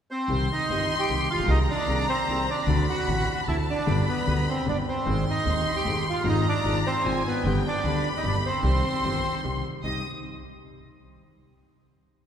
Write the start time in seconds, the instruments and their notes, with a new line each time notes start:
0.11 bandoneon C4 C5
0.28 upright bass C2, grand piano C2 C3 D#3 G3 C4 G4, violin section C6
0.52 bandoneon D#4 D#5
0.69 upright bass G1, grand piano G1 G2 D#3 G3 C4 G4
0.99 bandoneon G4 G5
1.09 upright bass C2, grand piano C2 C3 D#3 G3 C4 G4
1.30 grand piano A1, bandoneon F4 F5
1.35 upright bass A1
1.39 grand piano A#1, upright bass A#1
1.44 grand piano B1, upright bass B1
1.48 upright bass C2, grand piano C2 C3 D#3 A#3 C4 G#4, bandoneon D#4 D#5, violin section A#5
1.70 bandoneon D4 D5
1.87 grand piano C2 C3 D#3 A#3 C4 G#4, upright bass C2
2.09 bandoneon C4 C5
2.28 upright bass C2, grand piano C2 C3 D#3 A#3 C4 G#4
2.50 bandoneon D4 D5
2.67 upright bass D2, grand piano D2 D3 A3 C4 F#4, violin section B5
2.90 bandoneon F#4 F#5
3.07 upright bass A1, grand piano A1 A2 D3 A3 C4 F#4
3.35 bandoneon F#4 F#5
3.47 upright bass D2, grand piano D2 D3 A3 C4 F#4, bandoneon E4 E5, violin section A5
3.70 bandoneon D4 D5
3.86 grand piano G1 G2 D3 G3 B3 G4, upright bass G1, violin section B5
4.08 bandoneon B3 B4
4.27 grand piano D2 D3 G3 B3 G4, upright bass D2, bandoneon B3 B4
4.49 bandoneon C4 C5
4.66 grand piano G1 G2 D3 G3 B3 G4, upright bass G1, bandoneon D4 D5
4.89 bandoneon C4 C5
5.05 grand piano G#1 G#2 D#3 G#3 C4 G#4, upright bass G#1, violin section C6
5.30 bandoneon D#4 D#5
5.45 grand piano D#1 D#2 D#3 G#3 C4 G#4, upright bass D#2
5.76 bandoneon G4 G5
5.85 upright bass G#1, grand piano G#1 G#2 D#3 G#3 C4 G#4
6.10 bandoneon F4 F5
6.24 upright bass G#1, grand piano G#1 G#2 D#3 G#3 C4 F4, violin section A#5
6.29 bandoneon D#4 D#5
6.48 bandoneon D4 D5
6.64 grand piano G#1 G#2 D#3 G#3 C4 F4, upright bass G#1
6.87 bandoneon C4 C5
7.04 upright bass G#1, grand piano G#1 G#2 D#3 G#3 C4 F4, violin section G#5
7.27 bandoneon B3 B4
7.44 upright bass G1, grand piano G1 G2 D3 G3 B3 G4, violin section G5
7.67 bandoneon D4 D5
7.83 upright bass D2, grand piano D2 D3 G3 B3 G4, violin section B5
8.17 bandoneon D#4 D#5
8.23 upright bass G1, grand piano G1 G2 D3 G3 B3 G4, bandoneon D4
8.28 bandoneon D5
8.46 bandoneon C4 C5
8.63 grand piano C2 C3 D#3 G3 C4 G4, upright bass C2, violin section C6
9.04 upright bass G1, grand piano G1 G2 D#3 G3 C4 G4
9.44 grand piano C2 C3 D#3 G3 C4 G4, upright bass C2
9.83 upright bass C2, grand piano C2 C4 D#4 G4, bandoneon D#5, violin section D#6